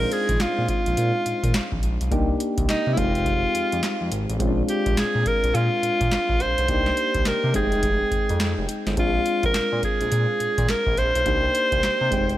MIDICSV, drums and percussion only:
0, 0, Header, 1, 2, 480
1, 0, Start_track
1, 0, Tempo, 571429
1, 1778, Time_signature, 4, 2, 24, 8
1, 10397, End_track
2, 0, Start_track
2, 0, Title_t, "Drums"
2, 97, Note_on_c, 9, 42, 75
2, 181, Note_off_c, 9, 42, 0
2, 243, Note_on_c, 9, 42, 52
2, 245, Note_on_c, 9, 36, 97
2, 327, Note_off_c, 9, 42, 0
2, 329, Note_off_c, 9, 36, 0
2, 335, Note_on_c, 9, 42, 83
2, 336, Note_on_c, 9, 38, 120
2, 340, Note_on_c, 9, 39, 92
2, 419, Note_off_c, 9, 42, 0
2, 420, Note_off_c, 9, 38, 0
2, 424, Note_off_c, 9, 39, 0
2, 576, Note_on_c, 9, 42, 67
2, 578, Note_on_c, 9, 36, 83
2, 660, Note_off_c, 9, 42, 0
2, 662, Note_off_c, 9, 36, 0
2, 725, Note_on_c, 9, 42, 54
2, 809, Note_off_c, 9, 42, 0
2, 817, Note_on_c, 9, 42, 61
2, 901, Note_off_c, 9, 42, 0
2, 1058, Note_on_c, 9, 42, 71
2, 1142, Note_off_c, 9, 42, 0
2, 1206, Note_on_c, 9, 36, 92
2, 1206, Note_on_c, 9, 42, 54
2, 1290, Note_off_c, 9, 36, 0
2, 1290, Note_off_c, 9, 42, 0
2, 1295, Note_on_c, 9, 38, 112
2, 1295, Note_on_c, 9, 42, 75
2, 1300, Note_on_c, 9, 39, 104
2, 1379, Note_off_c, 9, 38, 0
2, 1379, Note_off_c, 9, 42, 0
2, 1384, Note_off_c, 9, 39, 0
2, 1446, Note_on_c, 9, 36, 86
2, 1530, Note_off_c, 9, 36, 0
2, 1536, Note_on_c, 9, 42, 74
2, 1620, Note_off_c, 9, 42, 0
2, 1687, Note_on_c, 9, 42, 46
2, 1771, Note_off_c, 9, 42, 0
2, 1777, Note_on_c, 9, 36, 104
2, 1778, Note_on_c, 9, 42, 66
2, 1861, Note_off_c, 9, 36, 0
2, 1862, Note_off_c, 9, 42, 0
2, 2018, Note_on_c, 9, 42, 79
2, 2102, Note_off_c, 9, 42, 0
2, 2164, Note_on_c, 9, 42, 51
2, 2166, Note_on_c, 9, 36, 87
2, 2248, Note_off_c, 9, 42, 0
2, 2250, Note_off_c, 9, 36, 0
2, 2258, Note_on_c, 9, 42, 82
2, 2259, Note_on_c, 9, 38, 112
2, 2263, Note_on_c, 9, 39, 91
2, 2342, Note_off_c, 9, 42, 0
2, 2343, Note_off_c, 9, 38, 0
2, 2347, Note_off_c, 9, 39, 0
2, 2498, Note_on_c, 9, 42, 67
2, 2499, Note_on_c, 9, 36, 85
2, 2582, Note_off_c, 9, 42, 0
2, 2583, Note_off_c, 9, 36, 0
2, 2648, Note_on_c, 9, 42, 52
2, 2732, Note_off_c, 9, 42, 0
2, 2739, Note_on_c, 9, 36, 90
2, 2739, Note_on_c, 9, 42, 64
2, 2823, Note_off_c, 9, 36, 0
2, 2823, Note_off_c, 9, 42, 0
2, 2980, Note_on_c, 9, 42, 67
2, 3064, Note_off_c, 9, 42, 0
2, 3128, Note_on_c, 9, 42, 49
2, 3212, Note_off_c, 9, 42, 0
2, 3217, Note_on_c, 9, 38, 122
2, 3217, Note_on_c, 9, 42, 80
2, 3221, Note_on_c, 9, 39, 108
2, 3301, Note_off_c, 9, 38, 0
2, 3301, Note_off_c, 9, 42, 0
2, 3305, Note_off_c, 9, 39, 0
2, 3457, Note_on_c, 9, 42, 69
2, 3541, Note_off_c, 9, 42, 0
2, 3608, Note_on_c, 9, 42, 46
2, 3692, Note_off_c, 9, 42, 0
2, 3696, Note_on_c, 9, 42, 68
2, 3698, Note_on_c, 9, 36, 114
2, 3780, Note_off_c, 9, 42, 0
2, 3782, Note_off_c, 9, 36, 0
2, 3936, Note_on_c, 9, 42, 78
2, 4020, Note_off_c, 9, 42, 0
2, 4084, Note_on_c, 9, 42, 51
2, 4086, Note_on_c, 9, 36, 88
2, 4168, Note_off_c, 9, 42, 0
2, 4170, Note_off_c, 9, 36, 0
2, 4177, Note_on_c, 9, 42, 87
2, 4178, Note_on_c, 9, 38, 113
2, 4183, Note_on_c, 9, 39, 97
2, 4261, Note_off_c, 9, 42, 0
2, 4262, Note_off_c, 9, 38, 0
2, 4267, Note_off_c, 9, 39, 0
2, 4417, Note_on_c, 9, 42, 62
2, 4419, Note_on_c, 9, 36, 83
2, 4501, Note_off_c, 9, 42, 0
2, 4503, Note_off_c, 9, 36, 0
2, 4567, Note_on_c, 9, 42, 50
2, 4651, Note_off_c, 9, 42, 0
2, 4660, Note_on_c, 9, 42, 63
2, 4744, Note_off_c, 9, 42, 0
2, 4899, Note_on_c, 9, 42, 70
2, 4983, Note_off_c, 9, 42, 0
2, 5047, Note_on_c, 9, 36, 97
2, 5047, Note_on_c, 9, 42, 53
2, 5131, Note_off_c, 9, 36, 0
2, 5131, Note_off_c, 9, 42, 0
2, 5137, Note_on_c, 9, 38, 124
2, 5137, Note_on_c, 9, 42, 75
2, 5142, Note_on_c, 9, 39, 101
2, 5221, Note_off_c, 9, 38, 0
2, 5221, Note_off_c, 9, 42, 0
2, 5226, Note_off_c, 9, 39, 0
2, 5288, Note_on_c, 9, 36, 86
2, 5372, Note_off_c, 9, 36, 0
2, 5377, Note_on_c, 9, 42, 67
2, 5461, Note_off_c, 9, 42, 0
2, 5527, Note_on_c, 9, 42, 46
2, 5611, Note_off_c, 9, 42, 0
2, 5615, Note_on_c, 9, 42, 66
2, 5617, Note_on_c, 9, 36, 108
2, 5699, Note_off_c, 9, 42, 0
2, 5701, Note_off_c, 9, 36, 0
2, 5764, Note_on_c, 9, 38, 64
2, 5848, Note_off_c, 9, 38, 0
2, 5856, Note_on_c, 9, 42, 75
2, 5940, Note_off_c, 9, 42, 0
2, 6002, Note_on_c, 9, 42, 53
2, 6005, Note_on_c, 9, 36, 92
2, 6086, Note_off_c, 9, 42, 0
2, 6089, Note_off_c, 9, 36, 0
2, 6093, Note_on_c, 9, 42, 86
2, 6094, Note_on_c, 9, 38, 114
2, 6099, Note_on_c, 9, 39, 87
2, 6177, Note_off_c, 9, 42, 0
2, 6178, Note_off_c, 9, 38, 0
2, 6183, Note_off_c, 9, 39, 0
2, 6335, Note_on_c, 9, 42, 61
2, 6338, Note_on_c, 9, 36, 87
2, 6419, Note_off_c, 9, 42, 0
2, 6422, Note_off_c, 9, 36, 0
2, 6484, Note_on_c, 9, 42, 52
2, 6568, Note_off_c, 9, 42, 0
2, 6575, Note_on_c, 9, 42, 66
2, 6578, Note_on_c, 9, 36, 89
2, 6659, Note_off_c, 9, 42, 0
2, 6662, Note_off_c, 9, 36, 0
2, 6817, Note_on_c, 9, 36, 82
2, 6818, Note_on_c, 9, 42, 67
2, 6901, Note_off_c, 9, 36, 0
2, 6902, Note_off_c, 9, 42, 0
2, 6967, Note_on_c, 9, 42, 54
2, 7051, Note_off_c, 9, 42, 0
2, 7055, Note_on_c, 9, 42, 77
2, 7056, Note_on_c, 9, 38, 115
2, 7060, Note_on_c, 9, 39, 101
2, 7139, Note_off_c, 9, 42, 0
2, 7140, Note_off_c, 9, 38, 0
2, 7144, Note_off_c, 9, 39, 0
2, 7297, Note_on_c, 9, 42, 67
2, 7381, Note_off_c, 9, 42, 0
2, 7448, Note_on_c, 9, 38, 66
2, 7448, Note_on_c, 9, 42, 45
2, 7532, Note_off_c, 9, 38, 0
2, 7532, Note_off_c, 9, 42, 0
2, 7536, Note_on_c, 9, 42, 70
2, 7538, Note_on_c, 9, 36, 112
2, 7620, Note_off_c, 9, 42, 0
2, 7622, Note_off_c, 9, 36, 0
2, 7776, Note_on_c, 9, 42, 71
2, 7860, Note_off_c, 9, 42, 0
2, 7923, Note_on_c, 9, 42, 49
2, 7926, Note_on_c, 9, 36, 94
2, 8007, Note_off_c, 9, 42, 0
2, 8010, Note_off_c, 9, 36, 0
2, 8016, Note_on_c, 9, 42, 87
2, 8017, Note_on_c, 9, 38, 109
2, 8021, Note_on_c, 9, 39, 91
2, 8100, Note_off_c, 9, 42, 0
2, 8101, Note_off_c, 9, 38, 0
2, 8105, Note_off_c, 9, 39, 0
2, 8257, Note_on_c, 9, 42, 66
2, 8259, Note_on_c, 9, 36, 78
2, 8341, Note_off_c, 9, 42, 0
2, 8343, Note_off_c, 9, 36, 0
2, 8406, Note_on_c, 9, 42, 52
2, 8490, Note_off_c, 9, 42, 0
2, 8498, Note_on_c, 9, 42, 63
2, 8582, Note_off_c, 9, 42, 0
2, 8739, Note_on_c, 9, 42, 68
2, 8823, Note_off_c, 9, 42, 0
2, 8887, Note_on_c, 9, 42, 50
2, 8888, Note_on_c, 9, 36, 92
2, 8971, Note_off_c, 9, 42, 0
2, 8972, Note_off_c, 9, 36, 0
2, 8976, Note_on_c, 9, 42, 76
2, 8977, Note_on_c, 9, 38, 125
2, 8981, Note_on_c, 9, 39, 94
2, 9060, Note_off_c, 9, 42, 0
2, 9061, Note_off_c, 9, 38, 0
2, 9065, Note_off_c, 9, 39, 0
2, 9128, Note_on_c, 9, 36, 89
2, 9212, Note_off_c, 9, 36, 0
2, 9219, Note_on_c, 9, 42, 69
2, 9303, Note_off_c, 9, 42, 0
2, 9369, Note_on_c, 9, 42, 48
2, 9453, Note_off_c, 9, 42, 0
2, 9457, Note_on_c, 9, 42, 73
2, 9458, Note_on_c, 9, 36, 112
2, 9541, Note_off_c, 9, 42, 0
2, 9542, Note_off_c, 9, 36, 0
2, 9699, Note_on_c, 9, 42, 74
2, 9783, Note_off_c, 9, 42, 0
2, 9846, Note_on_c, 9, 42, 51
2, 9847, Note_on_c, 9, 36, 97
2, 9930, Note_off_c, 9, 42, 0
2, 9931, Note_off_c, 9, 36, 0
2, 9938, Note_on_c, 9, 42, 83
2, 9939, Note_on_c, 9, 38, 116
2, 9944, Note_on_c, 9, 39, 101
2, 10022, Note_off_c, 9, 42, 0
2, 10023, Note_off_c, 9, 38, 0
2, 10028, Note_off_c, 9, 39, 0
2, 10179, Note_on_c, 9, 36, 87
2, 10179, Note_on_c, 9, 42, 67
2, 10263, Note_off_c, 9, 36, 0
2, 10263, Note_off_c, 9, 42, 0
2, 10328, Note_on_c, 9, 42, 52
2, 10397, Note_off_c, 9, 42, 0
2, 10397, End_track
0, 0, End_of_file